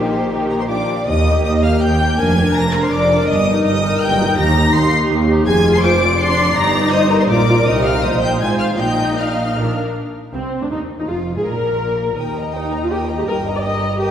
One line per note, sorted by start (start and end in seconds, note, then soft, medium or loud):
0.00 0.68 A#1 medium
0.00 0.29 D#3 soft
0.00 0.30 A#3 medium
0.00 0.30 D#4 medium
0.00 0.30 G4 soft
0.00 0.89 G4 medium
0.00 0.30 C5 medium
0.31 0.69 D#3 soft
0.31 0.68 A#3 soft
0.31 0.50 D#4 soft
0.31 0.50 G4 soft
0.31 0.50 A#4 medium
0.50 0.59 A#4 medium
0.50 0.54 A#5 medium
0.59 0.69 C5 medium
0.59 0.64 C6 medium
0.69 0.77 A#1 medium
0.69 0.89 F3 soft
0.69 0.88 A#3 soft
0.69 0.88 D4 medium
0.69 0.88 F4 medium
0.69 1.07 D5 medium
0.69 1.07 D6 medium
1.07 1.40 D#2 medium
1.07 1.41 D#2 medium
1.07 1.44 D#5 medium
1.07 1.43 D#6 medium
1.27 1.62 A#3 medium
1.27 1.62 G4 medium
1.44 1.78 D#2 medium
1.44 1.63 D#5 medium
1.44 1.52 D#6 medium
1.63 1.99 A#3 medium
1.63 1.99 G4 medium
1.63 1.82 F5 medium
1.63 1.82 F6 medium
1.81 2.14 D#2 medium
1.81 2.15 D#2 medium
1.81 2.18 G5 medium
1.81 2.19 G6 medium
2.00 2.18 A#3 medium
2.00 2.18 G4 medium
2.18 2.51 F1 medium
2.18 2.51 F2 medium
2.18 2.36 D4 medium
2.18 2.36 A#4 medium
2.18 2.54 G#5 medium
2.18 2.55 G#6 loud
2.37 2.73 D4 medium
2.37 2.73 A#4 medium
2.54 2.88 F1 medium
2.54 2.88 F2 medium
2.54 2.73 A#5 medium
2.54 2.74 A#6 loud
2.73 3.09 D4 medium
2.73 2.82 A#4 medium
2.73 3.10 A#4 medium
2.73 2.83 A#5 medium
2.82 2.86 C5 medium
2.82 2.92 C6 medium
2.91 3.24 F1 medium
2.91 3.24 F2 medium
2.91 3.27 D5 medium
2.91 3.28 D6 medium
3.10 3.28 D4 medium
3.10 3.28 A#4 medium
3.28 3.61 G1 medium
3.28 3.61 G2 medium
3.28 3.63 D#5 medium
3.28 3.63 D#6 loud
3.47 3.82 D#4 medium
3.47 3.82 A#4 medium
3.64 3.97 G1 medium
3.64 3.97 G2 medium
3.64 4.00 D#5 medium
3.64 4.00 D#6 loud
3.83 4.19 D#4 medium
3.83 4.19 A#4 medium
4.01 4.33 G1 medium
4.01 4.33 G2 medium
4.01 4.37 G5 medium
4.01 4.38 G6 loud
4.20 4.36 D#4 medium
4.20 4.38 A#4 medium
4.37 4.70 D#2 medium
4.37 4.55 D#4 medium
4.37 4.54 G4 medium
4.37 4.73 A#5 medium
4.37 4.73 A#6 loud
4.56 4.91 D#4 medium
4.56 4.91 G4 medium
4.74 5.06 D#2 medium
4.74 4.92 C6 loud
4.74 4.92 C7 loud
4.92 5.27 D#4 medium
4.92 5.27 G4 medium
5.10 5.42 D#2 medium
5.10 5.43 D#2 medium
5.29 5.47 D#4 medium
5.29 5.46 G4 medium
5.47 6.52 F1 medium
5.47 6.52 F2 medium
5.47 6.15 F4 medium
5.47 5.81 G#4 medium
5.47 5.72 G#5 loud
5.47 5.72 G#6 loud
5.74 5.83 C6 medium
5.74 5.78 C7 medium
5.83 6.01 C5 medium
5.83 6.19 D6 medium
5.83 6.19 D7 loud
6.01 6.92 D5 medium
6.19 6.55 D4 medium
6.19 6.55 C6 loud
6.19 6.56 C7 loud
6.56 7.29 G1 medium
6.56 7.29 G2 medium
6.56 7.28 D#4 medium
6.56 6.92 A#5 loud
6.56 6.93 A#6 loud
6.92 7.29 C5 medium
6.92 7.10 D#5 medium
6.92 7.11 D#6 loud
7.10 7.20 A#4 medium
7.10 7.14 A#5 medium
7.20 7.29 C5 medium
7.20 7.24 C6 medium
7.29 7.66 A#1 medium
7.29 7.66 A#2 medium
7.29 7.37 F4 medium
7.29 8.03 A#4 medium
7.29 7.65 D5 medium
7.29 7.65 D6 loud
7.48 7.55 F4 medium
7.66 8.03 C2 medium
7.66 8.03 C3 medium
7.66 8.03 D#4 medium
7.66 7.85 D#5 medium
7.66 7.85 D#6 loud
7.84 8.03 F5 medium
7.84 8.03 F6 loud
8.03 8.41 A#1 medium
8.03 8.41 A#2 medium
8.03 8.41 D#4 medium
8.03 8.40 C5 medium
8.03 8.22 D#5 medium
8.03 8.22 D#6 loud
8.22 8.29 G5 medium
8.22 8.41 G6 medium
8.41 8.80 G#1 medium
8.41 8.80 G#2 medium
8.41 8.80 F4 medium
8.41 8.79 C5 medium
8.41 8.60 G#5 medium
8.41 8.49 G#6 loud
8.60 8.79 F5 medium
8.60 8.68 F6 medium
8.78 9.56 A#1 medium
8.78 9.56 A#2 medium
8.78 9.58 D#4 medium
8.78 9.58 D#5 medium
8.78 9.18 G5 medium
8.78 9.17 G6 medium
9.18 9.76 F5 medium
9.18 9.77 F6 medium
9.57 9.65 A#1 medium
9.57 9.65 A#2 medium
9.57 9.77 D4 medium
9.57 9.77 A#4 medium
10.33 10.42 C2 soft
10.33 10.41 C4 medium
10.33 10.60 C4 medium
10.33 10.42 C4 soft
10.62 10.65 D2 soft
10.62 10.71 D4 soft
10.62 10.66 D4 soft
10.62 10.71 D4 soft
10.70 10.79 D#2 soft
10.70 10.78 D#4 soft
10.70 10.79 D#4 medium
10.70 10.80 D#4 soft
10.98 11.08 D#2 soft
10.98 11.08 D#4 soft
10.98 11.03 D#4 soft
10.98 11.08 D#4 soft
11.07 11.36 F1 medium
11.07 11.36 F2 medium
11.07 11.15 F4 medium
11.07 11.16 F4 medium
11.07 11.36 F4 medium
11.36 11.45 G#2 soft
11.36 11.45 G#4 soft
11.36 11.45 G#4 medium
11.36 11.45 G#4 soft
11.45 12.18 A#1 medium
11.45 12.18 A#2 soft
11.45 12.16 A#4 medium
11.45 12.17 A#4 medium
12.18 13.23 D#2 soft
12.18 12.35 A#4 soft
12.18 12.35 G5 soft
12.18 12.35 D#6 soft
12.37 12.55 D#5 soft
12.37 12.55 A#5 soft
12.54 12.79 D#4 medium
12.54 12.72 A#4 soft
12.54 12.72 G5 soft
12.54 12.72 D#6 soft
12.72 12.91 D#5 soft
12.72 12.90 A#5 soft
12.72 12.91 A#5 soft
12.82 12.86 F4 medium
12.90 12.98 G4 medium
12.90 13.08 A#4 soft
12.90 13.08 G5 soft
12.90 13.07 D#6 soft
13.09 13.27 D#5 soft
13.09 13.27 A#5 soft
13.18 13.22 G4 medium
13.27 14.11 G1 medium
13.27 14.11 G2 medium
13.27 13.35 A#4 medium
13.27 13.44 A#4 medium
13.27 13.44 G5 soft
13.27 13.44 D#6 medium
13.46 13.64 D#5 soft
13.46 13.64 A#5 soft
13.55 13.58 D5 medium
13.63 13.82 A#4 soft
13.63 13.99 D#5 medium
13.63 13.82 G5 medium
13.63 13.82 D#6 medium
13.82 14.00 D#5 soft
13.82 14.00 A#5 soft
13.99 14.11 G4 medium
13.99 14.11 A#4 medium
13.99 14.11 G5 medium
13.99 14.11 D#6 medium